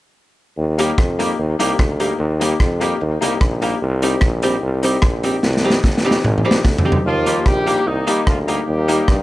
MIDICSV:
0, 0, Header, 1, 7, 480
1, 0, Start_track
1, 0, Key_signature, -3, "major"
1, 0, Tempo, 405132
1, 679, Time_signature, 4, 2, 24, 8
1, 10931, End_track
2, 0, Start_track
2, 0, Title_t, "Upright piano"
2, 0, Program_c, 0, 0
2, 921, Note_on_c, 0, 58, 88
2, 927, Note_on_c, 0, 63, 88
2, 934, Note_on_c, 0, 67, 93
2, 1097, Note_off_c, 0, 58, 0
2, 1101, Note_off_c, 0, 63, 0
2, 1104, Note_off_c, 0, 67, 0
2, 1156, Note_on_c, 0, 67, 29
2, 1158, Note_on_c, 0, 63, 25
2, 1207, Note_off_c, 0, 67, 0
2, 1208, Note_off_c, 0, 63, 0
2, 1405, Note_on_c, 0, 58, 101
2, 1411, Note_on_c, 0, 63, 88
2, 1416, Note_on_c, 0, 67, 103
2, 1579, Note_off_c, 0, 58, 0
2, 1583, Note_off_c, 0, 63, 0
2, 1585, Note_off_c, 0, 67, 0
2, 1884, Note_on_c, 0, 58, 100
2, 1890, Note_on_c, 0, 63, 82
2, 1901, Note_on_c, 0, 67, 114
2, 2059, Note_off_c, 0, 58, 0
2, 2062, Note_off_c, 0, 63, 0
2, 2068, Note_off_c, 0, 67, 0
2, 2118, Note_on_c, 0, 63, 26
2, 2119, Note_on_c, 0, 67, 28
2, 2169, Note_off_c, 0, 63, 0
2, 2169, Note_off_c, 0, 67, 0
2, 2364, Note_on_c, 0, 58, 80
2, 2372, Note_on_c, 0, 63, 81
2, 2377, Note_on_c, 0, 67, 89
2, 2539, Note_off_c, 0, 58, 0
2, 2543, Note_off_c, 0, 63, 0
2, 2546, Note_off_c, 0, 67, 0
2, 2840, Note_on_c, 0, 58, 84
2, 2850, Note_on_c, 0, 63, 78
2, 2855, Note_on_c, 0, 67, 98
2, 3017, Note_off_c, 0, 58, 0
2, 3022, Note_off_c, 0, 63, 0
2, 3025, Note_off_c, 0, 67, 0
2, 3317, Note_on_c, 0, 58, 92
2, 3326, Note_on_c, 0, 63, 88
2, 3333, Note_on_c, 0, 67, 108
2, 3496, Note_off_c, 0, 58, 0
2, 3500, Note_off_c, 0, 63, 0
2, 3503, Note_off_c, 0, 67, 0
2, 3799, Note_on_c, 0, 58, 94
2, 3807, Note_on_c, 0, 63, 94
2, 3813, Note_on_c, 0, 67, 104
2, 3977, Note_off_c, 0, 58, 0
2, 3981, Note_off_c, 0, 63, 0
2, 3983, Note_off_c, 0, 67, 0
2, 4035, Note_on_c, 0, 67, 28
2, 4036, Note_on_c, 0, 63, 24
2, 4087, Note_off_c, 0, 67, 0
2, 4088, Note_off_c, 0, 63, 0
2, 4280, Note_on_c, 0, 58, 92
2, 4291, Note_on_c, 0, 63, 72
2, 4296, Note_on_c, 0, 67, 92
2, 4457, Note_off_c, 0, 58, 0
2, 4463, Note_off_c, 0, 63, 0
2, 4465, Note_off_c, 0, 67, 0
2, 4761, Note_on_c, 0, 60, 84
2, 4765, Note_on_c, 0, 63, 81
2, 4774, Note_on_c, 0, 67, 97
2, 4938, Note_off_c, 0, 60, 0
2, 4940, Note_off_c, 0, 63, 0
2, 4944, Note_off_c, 0, 67, 0
2, 5236, Note_on_c, 0, 60, 94
2, 5245, Note_on_c, 0, 63, 79
2, 5251, Note_on_c, 0, 67, 106
2, 5415, Note_off_c, 0, 60, 0
2, 5420, Note_off_c, 0, 63, 0
2, 5422, Note_off_c, 0, 67, 0
2, 5715, Note_on_c, 0, 60, 96
2, 5723, Note_on_c, 0, 63, 91
2, 5730, Note_on_c, 0, 67, 110
2, 5894, Note_off_c, 0, 60, 0
2, 5898, Note_off_c, 0, 63, 0
2, 5902, Note_off_c, 0, 67, 0
2, 5949, Note_on_c, 0, 63, 23
2, 5950, Note_on_c, 0, 67, 26
2, 6004, Note_off_c, 0, 63, 0
2, 6004, Note_off_c, 0, 67, 0
2, 6193, Note_on_c, 0, 60, 78
2, 6202, Note_on_c, 0, 63, 76
2, 6207, Note_on_c, 0, 67, 92
2, 6373, Note_off_c, 0, 60, 0
2, 6378, Note_off_c, 0, 63, 0
2, 6380, Note_off_c, 0, 67, 0
2, 6676, Note_on_c, 0, 60, 89
2, 6682, Note_on_c, 0, 63, 78
2, 6689, Note_on_c, 0, 67, 94
2, 6855, Note_off_c, 0, 60, 0
2, 6858, Note_off_c, 0, 63, 0
2, 6861, Note_off_c, 0, 67, 0
2, 6916, Note_on_c, 0, 63, 27
2, 6919, Note_on_c, 0, 67, 30
2, 6967, Note_off_c, 0, 63, 0
2, 6969, Note_off_c, 0, 67, 0
2, 7157, Note_on_c, 0, 60, 90
2, 7168, Note_on_c, 0, 63, 91
2, 7174, Note_on_c, 0, 67, 111
2, 7335, Note_off_c, 0, 60, 0
2, 7340, Note_off_c, 0, 63, 0
2, 7344, Note_off_c, 0, 67, 0
2, 7642, Note_on_c, 0, 60, 94
2, 7647, Note_on_c, 0, 63, 87
2, 7655, Note_on_c, 0, 67, 107
2, 7818, Note_off_c, 0, 60, 0
2, 7820, Note_off_c, 0, 63, 0
2, 7824, Note_off_c, 0, 67, 0
2, 7882, Note_on_c, 0, 63, 25
2, 7884, Note_on_c, 0, 67, 25
2, 7930, Note_off_c, 0, 63, 0
2, 7931, Note_off_c, 0, 67, 0
2, 8118, Note_on_c, 0, 60, 75
2, 8128, Note_on_c, 0, 63, 78
2, 8134, Note_on_c, 0, 67, 93
2, 8296, Note_off_c, 0, 60, 0
2, 8301, Note_off_c, 0, 63, 0
2, 8303, Note_off_c, 0, 67, 0
2, 8599, Note_on_c, 0, 58, 82
2, 8601, Note_on_c, 0, 63, 78
2, 8609, Note_on_c, 0, 67, 102
2, 8776, Note_off_c, 0, 58, 0
2, 8777, Note_off_c, 0, 63, 0
2, 8781, Note_off_c, 0, 67, 0
2, 8843, Note_on_c, 0, 63, 25
2, 8843, Note_on_c, 0, 67, 28
2, 8890, Note_off_c, 0, 63, 0
2, 8891, Note_off_c, 0, 67, 0
2, 9076, Note_on_c, 0, 58, 99
2, 9084, Note_on_c, 0, 63, 78
2, 9092, Note_on_c, 0, 67, 101
2, 9255, Note_off_c, 0, 58, 0
2, 9259, Note_off_c, 0, 63, 0
2, 9263, Note_off_c, 0, 67, 0
2, 9557, Note_on_c, 0, 58, 97
2, 9562, Note_on_c, 0, 63, 93
2, 9568, Note_on_c, 0, 67, 104
2, 9735, Note_off_c, 0, 58, 0
2, 9738, Note_off_c, 0, 63, 0
2, 9741, Note_off_c, 0, 67, 0
2, 9798, Note_on_c, 0, 67, 24
2, 9799, Note_on_c, 0, 63, 22
2, 9848, Note_off_c, 0, 67, 0
2, 9849, Note_off_c, 0, 63, 0
2, 10036, Note_on_c, 0, 58, 82
2, 10040, Note_on_c, 0, 63, 74
2, 10051, Note_on_c, 0, 67, 88
2, 10215, Note_off_c, 0, 58, 0
2, 10217, Note_off_c, 0, 63, 0
2, 10222, Note_off_c, 0, 67, 0
2, 10523, Note_on_c, 0, 58, 90
2, 10528, Note_on_c, 0, 63, 82
2, 10535, Note_on_c, 0, 67, 87
2, 10698, Note_off_c, 0, 58, 0
2, 10701, Note_off_c, 0, 63, 0
2, 10704, Note_off_c, 0, 67, 0
2, 10767, Note_on_c, 0, 63, 27
2, 10767, Note_on_c, 0, 67, 29
2, 10813, Note_off_c, 0, 63, 0
2, 10813, Note_off_c, 0, 67, 0
2, 10931, End_track
3, 0, Start_track
3, 0, Title_t, "Hollow-body jazz guitar"
3, 0, Program_c, 1, 26
3, 937, Note_on_c, 1, 55, 80
3, 941, Note_on_c, 1, 58, 82
3, 947, Note_on_c, 1, 63, 89
3, 950, Note_on_c, 1, 67, 91
3, 1072, Note_off_c, 1, 55, 0
3, 1074, Note_off_c, 1, 58, 0
3, 1077, Note_off_c, 1, 63, 0
3, 1079, Note_off_c, 1, 67, 0
3, 1412, Note_on_c, 1, 55, 78
3, 1421, Note_on_c, 1, 58, 90
3, 1426, Note_on_c, 1, 63, 82
3, 1427, Note_on_c, 1, 67, 81
3, 1550, Note_off_c, 1, 55, 0
3, 1554, Note_off_c, 1, 58, 0
3, 1557, Note_off_c, 1, 63, 0
3, 1557, Note_off_c, 1, 67, 0
3, 1890, Note_on_c, 1, 55, 97
3, 1897, Note_on_c, 1, 58, 95
3, 1897, Note_on_c, 1, 63, 102
3, 1904, Note_on_c, 1, 67, 102
3, 2029, Note_off_c, 1, 55, 0
3, 2032, Note_off_c, 1, 58, 0
3, 2032, Note_off_c, 1, 63, 0
3, 2035, Note_off_c, 1, 67, 0
3, 2369, Note_on_c, 1, 55, 81
3, 2373, Note_on_c, 1, 58, 82
3, 2375, Note_on_c, 1, 63, 89
3, 2381, Note_on_c, 1, 67, 88
3, 2508, Note_off_c, 1, 55, 0
3, 2510, Note_off_c, 1, 58, 0
3, 2511, Note_off_c, 1, 63, 0
3, 2514, Note_off_c, 1, 67, 0
3, 2859, Note_on_c, 1, 55, 81
3, 2865, Note_on_c, 1, 63, 89
3, 2866, Note_on_c, 1, 58, 87
3, 2869, Note_on_c, 1, 67, 90
3, 2993, Note_off_c, 1, 55, 0
3, 2996, Note_off_c, 1, 63, 0
3, 2997, Note_off_c, 1, 58, 0
3, 2998, Note_off_c, 1, 67, 0
3, 3330, Note_on_c, 1, 55, 87
3, 3336, Note_on_c, 1, 58, 80
3, 3341, Note_on_c, 1, 63, 98
3, 3347, Note_on_c, 1, 67, 92
3, 3468, Note_off_c, 1, 55, 0
3, 3472, Note_off_c, 1, 58, 0
3, 3474, Note_off_c, 1, 63, 0
3, 3477, Note_off_c, 1, 67, 0
3, 3820, Note_on_c, 1, 55, 79
3, 3827, Note_on_c, 1, 58, 91
3, 3829, Note_on_c, 1, 63, 95
3, 3836, Note_on_c, 1, 67, 90
3, 3954, Note_off_c, 1, 55, 0
3, 3957, Note_off_c, 1, 58, 0
3, 3958, Note_off_c, 1, 63, 0
3, 3962, Note_off_c, 1, 67, 0
3, 4292, Note_on_c, 1, 55, 86
3, 4294, Note_on_c, 1, 58, 91
3, 4299, Note_on_c, 1, 63, 82
3, 4302, Note_on_c, 1, 67, 92
3, 4429, Note_off_c, 1, 55, 0
3, 4431, Note_off_c, 1, 58, 0
3, 4433, Note_off_c, 1, 63, 0
3, 4434, Note_off_c, 1, 67, 0
3, 4774, Note_on_c, 1, 55, 76
3, 4777, Note_on_c, 1, 63, 81
3, 4779, Note_on_c, 1, 60, 81
3, 4782, Note_on_c, 1, 67, 77
3, 4911, Note_off_c, 1, 55, 0
3, 4912, Note_off_c, 1, 63, 0
3, 4913, Note_off_c, 1, 60, 0
3, 4915, Note_off_c, 1, 67, 0
3, 5248, Note_on_c, 1, 55, 103
3, 5252, Note_on_c, 1, 60, 105
3, 5256, Note_on_c, 1, 63, 105
3, 5261, Note_on_c, 1, 67, 96
3, 5388, Note_off_c, 1, 55, 0
3, 5389, Note_off_c, 1, 60, 0
3, 5391, Note_off_c, 1, 63, 0
3, 5394, Note_off_c, 1, 67, 0
3, 5738, Note_on_c, 1, 55, 74
3, 5738, Note_on_c, 1, 60, 86
3, 5740, Note_on_c, 1, 63, 96
3, 5744, Note_on_c, 1, 67, 86
3, 5872, Note_off_c, 1, 55, 0
3, 5872, Note_off_c, 1, 60, 0
3, 5873, Note_off_c, 1, 63, 0
3, 5875, Note_off_c, 1, 67, 0
3, 6202, Note_on_c, 1, 55, 82
3, 6213, Note_on_c, 1, 60, 90
3, 6214, Note_on_c, 1, 63, 83
3, 6220, Note_on_c, 1, 67, 93
3, 6344, Note_off_c, 1, 55, 0
3, 6350, Note_off_c, 1, 60, 0
3, 6350, Note_off_c, 1, 63, 0
3, 6353, Note_off_c, 1, 67, 0
3, 6688, Note_on_c, 1, 55, 80
3, 6696, Note_on_c, 1, 63, 93
3, 6697, Note_on_c, 1, 60, 81
3, 6701, Note_on_c, 1, 67, 89
3, 6827, Note_off_c, 1, 55, 0
3, 6831, Note_off_c, 1, 63, 0
3, 6832, Note_off_c, 1, 60, 0
3, 6834, Note_off_c, 1, 67, 0
3, 7166, Note_on_c, 1, 55, 91
3, 7173, Note_on_c, 1, 60, 98
3, 7176, Note_on_c, 1, 63, 96
3, 7179, Note_on_c, 1, 67, 101
3, 7306, Note_off_c, 1, 55, 0
3, 7309, Note_off_c, 1, 60, 0
3, 7311, Note_off_c, 1, 63, 0
3, 7312, Note_off_c, 1, 67, 0
3, 7638, Note_on_c, 1, 55, 85
3, 7641, Note_on_c, 1, 60, 93
3, 7648, Note_on_c, 1, 63, 88
3, 7649, Note_on_c, 1, 67, 102
3, 7782, Note_off_c, 1, 55, 0
3, 7784, Note_off_c, 1, 60, 0
3, 7787, Note_off_c, 1, 63, 0
3, 7787, Note_off_c, 1, 67, 0
3, 8116, Note_on_c, 1, 55, 81
3, 8120, Note_on_c, 1, 60, 75
3, 8124, Note_on_c, 1, 63, 83
3, 8126, Note_on_c, 1, 67, 87
3, 8261, Note_off_c, 1, 55, 0
3, 8263, Note_off_c, 1, 60, 0
3, 8265, Note_off_c, 1, 63, 0
3, 8266, Note_off_c, 1, 67, 0
3, 8603, Note_on_c, 1, 55, 84
3, 8613, Note_on_c, 1, 58, 88
3, 8616, Note_on_c, 1, 63, 86
3, 8621, Note_on_c, 1, 67, 91
3, 8745, Note_off_c, 1, 55, 0
3, 8750, Note_off_c, 1, 58, 0
3, 8751, Note_off_c, 1, 63, 0
3, 8753, Note_off_c, 1, 67, 0
3, 9082, Note_on_c, 1, 55, 84
3, 9085, Note_on_c, 1, 58, 87
3, 9091, Note_on_c, 1, 63, 89
3, 9094, Note_on_c, 1, 67, 82
3, 9224, Note_off_c, 1, 55, 0
3, 9226, Note_off_c, 1, 58, 0
3, 9229, Note_off_c, 1, 63, 0
3, 9230, Note_off_c, 1, 67, 0
3, 9560, Note_on_c, 1, 55, 86
3, 9563, Note_on_c, 1, 58, 88
3, 9570, Note_on_c, 1, 63, 96
3, 9571, Note_on_c, 1, 67, 97
3, 9703, Note_off_c, 1, 55, 0
3, 9705, Note_off_c, 1, 58, 0
3, 9708, Note_off_c, 1, 63, 0
3, 9709, Note_off_c, 1, 67, 0
3, 10046, Note_on_c, 1, 55, 76
3, 10051, Note_on_c, 1, 58, 86
3, 10058, Note_on_c, 1, 63, 82
3, 10059, Note_on_c, 1, 67, 78
3, 10186, Note_off_c, 1, 55, 0
3, 10189, Note_off_c, 1, 58, 0
3, 10192, Note_off_c, 1, 63, 0
3, 10193, Note_off_c, 1, 67, 0
3, 10522, Note_on_c, 1, 55, 87
3, 10525, Note_on_c, 1, 58, 93
3, 10529, Note_on_c, 1, 63, 89
3, 10536, Note_on_c, 1, 67, 87
3, 10664, Note_off_c, 1, 55, 0
3, 10666, Note_off_c, 1, 58, 0
3, 10668, Note_off_c, 1, 63, 0
3, 10671, Note_off_c, 1, 67, 0
3, 10931, End_track
4, 0, Start_track
4, 0, Title_t, "Horn section"
4, 0, Program_c, 2, 61
4, 8376, Note_on_c, 2, 53, 96
4, 8376, Note_on_c, 2, 65, 105
4, 8383, Note_on_c, 2, 58, 74
4, 8814, Note_off_c, 2, 53, 0
4, 8814, Note_off_c, 2, 65, 0
4, 8835, Note_off_c, 2, 58, 0
4, 8843, Note_on_c, 2, 55, 98
4, 8843, Note_on_c, 2, 67, 106
4, 8849, Note_on_c, 2, 58, 72
4, 8852, Note_on_c, 2, 63, 80
4, 9310, Note_off_c, 2, 63, 0
4, 9316, Note_off_c, 2, 58, 0
4, 9321, Note_off_c, 2, 55, 0
4, 9321, Note_off_c, 2, 67, 0
4, 9324, Note_on_c, 2, 51, 85
4, 9324, Note_on_c, 2, 63, 92
4, 9328, Note_on_c, 2, 55, 61
4, 9330, Note_on_c, 2, 58, 67
4, 9801, Note_off_c, 2, 51, 0
4, 9801, Note_off_c, 2, 63, 0
4, 9825, Note_on_c, 2, 53, 80
4, 9825, Note_on_c, 2, 65, 87
4, 9931, Note_off_c, 2, 53, 0
4, 9931, Note_off_c, 2, 65, 0
4, 10059, Note_off_c, 2, 58, 0
4, 10067, Note_on_c, 2, 63, 79
4, 10069, Note_off_c, 2, 55, 0
4, 10069, Note_on_c, 2, 55, 89
4, 10069, Note_on_c, 2, 67, 97
4, 10073, Note_on_c, 2, 58, 71
4, 10931, Note_off_c, 2, 55, 0
4, 10931, Note_off_c, 2, 58, 0
4, 10931, Note_off_c, 2, 63, 0
4, 10931, Note_off_c, 2, 67, 0
4, 10931, End_track
5, 0, Start_track
5, 0, Title_t, "Tuba"
5, 0, Program_c, 3, 58
5, 682, Note_on_c, 3, 39, 104
5, 1089, Note_off_c, 3, 39, 0
5, 1161, Note_on_c, 3, 41, 84
5, 1569, Note_off_c, 3, 41, 0
5, 1638, Note_on_c, 3, 39, 105
5, 1851, Note_off_c, 3, 39, 0
5, 1887, Note_on_c, 3, 36, 90
5, 2084, Note_off_c, 3, 36, 0
5, 2125, Note_on_c, 3, 38, 88
5, 2530, Note_off_c, 3, 38, 0
5, 2594, Note_on_c, 3, 39, 102
5, 3005, Note_off_c, 3, 39, 0
5, 3077, Note_on_c, 3, 41, 98
5, 3486, Note_off_c, 3, 41, 0
5, 3564, Note_on_c, 3, 39, 102
5, 3774, Note_off_c, 3, 39, 0
5, 3808, Note_on_c, 3, 36, 85
5, 4004, Note_off_c, 3, 36, 0
5, 4040, Note_on_c, 3, 34, 95
5, 4448, Note_off_c, 3, 34, 0
5, 4525, Note_on_c, 3, 36, 116
5, 4930, Note_off_c, 3, 36, 0
5, 4999, Note_on_c, 3, 34, 101
5, 5407, Note_off_c, 3, 34, 0
5, 5467, Note_on_c, 3, 36, 99
5, 5880, Note_off_c, 3, 36, 0
5, 5954, Note_on_c, 3, 34, 81
5, 6364, Note_off_c, 3, 34, 0
5, 6426, Note_on_c, 3, 36, 97
5, 6839, Note_off_c, 3, 36, 0
5, 6919, Note_on_c, 3, 31, 83
5, 7326, Note_off_c, 3, 31, 0
5, 7398, Note_on_c, 3, 32, 113
5, 7611, Note_off_c, 3, 32, 0
5, 7647, Note_on_c, 3, 34, 90
5, 7843, Note_off_c, 3, 34, 0
5, 7874, Note_on_c, 3, 38, 85
5, 8284, Note_off_c, 3, 38, 0
5, 8352, Note_on_c, 3, 39, 103
5, 8763, Note_off_c, 3, 39, 0
5, 8841, Note_on_c, 3, 34, 91
5, 9248, Note_off_c, 3, 34, 0
5, 9315, Note_on_c, 3, 36, 94
5, 9529, Note_off_c, 3, 36, 0
5, 9798, Note_on_c, 3, 38, 94
5, 10206, Note_off_c, 3, 38, 0
5, 10275, Note_on_c, 3, 39, 98
5, 10685, Note_off_c, 3, 39, 0
5, 10764, Note_on_c, 3, 43, 87
5, 10931, Note_off_c, 3, 43, 0
5, 10931, End_track
6, 0, Start_track
6, 0, Title_t, "Muted hollow-body jazz guitar strokes"
6, 3564, Note_on_c, 9, 29, 36
6, 3682, Note_off_c, 9, 29, 0
6, 7390, Note_on_c, 9, 29, 42
6, 7509, Note_off_c, 9, 29, 0
6, 10931, End_track
7, 0, Start_track
7, 0, Title_t, "Drums"
7, 930, Note_on_c, 9, 42, 85
7, 1049, Note_off_c, 9, 42, 0
7, 1162, Note_on_c, 9, 36, 115
7, 1165, Note_on_c, 9, 37, 106
7, 1280, Note_off_c, 9, 36, 0
7, 1284, Note_off_c, 9, 37, 0
7, 1418, Note_on_c, 9, 42, 83
7, 1536, Note_off_c, 9, 42, 0
7, 1895, Note_on_c, 9, 42, 97
7, 2013, Note_off_c, 9, 42, 0
7, 2123, Note_on_c, 9, 36, 108
7, 2127, Note_on_c, 9, 37, 110
7, 2241, Note_off_c, 9, 36, 0
7, 2245, Note_off_c, 9, 37, 0
7, 2368, Note_on_c, 9, 42, 78
7, 2486, Note_off_c, 9, 42, 0
7, 2857, Note_on_c, 9, 42, 97
7, 2975, Note_off_c, 9, 42, 0
7, 3081, Note_on_c, 9, 36, 105
7, 3081, Note_on_c, 9, 37, 102
7, 3199, Note_off_c, 9, 36, 0
7, 3199, Note_off_c, 9, 37, 0
7, 3330, Note_on_c, 9, 42, 78
7, 3448, Note_off_c, 9, 42, 0
7, 3814, Note_on_c, 9, 42, 101
7, 3932, Note_off_c, 9, 42, 0
7, 4039, Note_on_c, 9, 37, 101
7, 4041, Note_on_c, 9, 36, 114
7, 4158, Note_off_c, 9, 37, 0
7, 4159, Note_off_c, 9, 36, 0
7, 4287, Note_on_c, 9, 42, 71
7, 4405, Note_off_c, 9, 42, 0
7, 4765, Note_on_c, 9, 42, 91
7, 4883, Note_off_c, 9, 42, 0
7, 4988, Note_on_c, 9, 37, 97
7, 4996, Note_on_c, 9, 36, 107
7, 5106, Note_off_c, 9, 37, 0
7, 5115, Note_off_c, 9, 36, 0
7, 5241, Note_on_c, 9, 42, 83
7, 5359, Note_off_c, 9, 42, 0
7, 5721, Note_on_c, 9, 42, 91
7, 5839, Note_off_c, 9, 42, 0
7, 5947, Note_on_c, 9, 37, 112
7, 5955, Note_on_c, 9, 36, 118
7, 6065, Note_off_c, 9, 37, 0
7, 6073, Note_off_c, 9, 36, 0
7, 6201, Note_on_c, 9, 42, 80
7, 6320, Note_off_c, 9, 42, 0
7, 6433, Note_on_c, 9, 38, 53
7, 6552, Note_off_c, 9, 38, 0
7, 6599, Note_on_c, 9, 38, 52
7, 6717, Note_off_c, 9, 38, 0
7, 6756, Note_on_c, 9, 38, 68
7, 6874, Note_off_c, 9, 38, 0
7, 6917, Note_on_c, 9, 36, 106
7, 6920, Note_on_c, 9, 38, 61
7, 7036, Note_off_c, 9, 36, 0
7, 7039, Note_off_c, 9, 38, 0
7, 7080, Note_on_c, 9, 38, 66
7, 7198, Note_off_c, 9, 38, 0
7, 7239, Note_on_c, 9, 38, 74
7, 7358, Note_off_c, 9, 38, 0
7, 7398, Note_on_c, 9, 45, 89
7, 7517, Note_off_c, 9, 45, 0
7, 7556, Note_on_c, 9, 45, 68
7, 7674, Note_off_c, 9, 45, 0
7, 7713, Note_on_c, 9, 38, 92
7, 7832, Note_off_c, 9, 38, 0
7, 7871, Note_on_c, 9, 38, 77
7, 7875, Note_on_c, 9, 36, 113
7, 7990, Note_off_c, 9, 38, 0
7, 7993, Note_off_c, 9, 36, 0
7, 8038, Note_on_c, 9, 43, 100
7, 8157, Note_off_c, 9, 43, 0
7, 8199, Note_on_c, 9, 43, 96
7, 8317, Note_off_c, 9, 43, 0
7, 8605, Note_on_c, 9, 42, 94
7, 8723, Note_off_c, 9, 42, 0
7, 8836, Note_on_c, 9, 37, 89
7, 8838, Note_on_c, 9, 36, 98
7, 8954, Note_off_c, 9, 37, 0
7, 8957, Note_off_c, 9, 36, 0
7, 9088, Note_on_c, 9, 42, 77
7, 9206, Note_off_c, 9, 42, 0
7, 9566, Note_on_c, 9, 42, 96
7, 9685, Note_off_c, 9, 42, 0
7, 9798, Note_on_c, 9, 36, 100
7, 9798, Note_on_c, 9, 37, 109
7, 9916, Note_off_c, 9, 37, 0
7, 9917, Note_off_c, 9, 36, 0
7, 10048, Note_on_c, 9, 42, 76
7, 10167, Note_off_c, 9, 42, 0
7, 10528, Note_on_c, 9, 42, 89
7, 10647, Note_off_c, 9, 42, 0
7, 10758, Note_on_c, 9, 37, 94
7, 10760, Note_on_c, 9, 36, 99
7, 10877, Note_off_c, 9, 37, 0
7, 10878, Note_off_c, 9, 36, 0
7, 10931, End_track
0, 0, End_of_file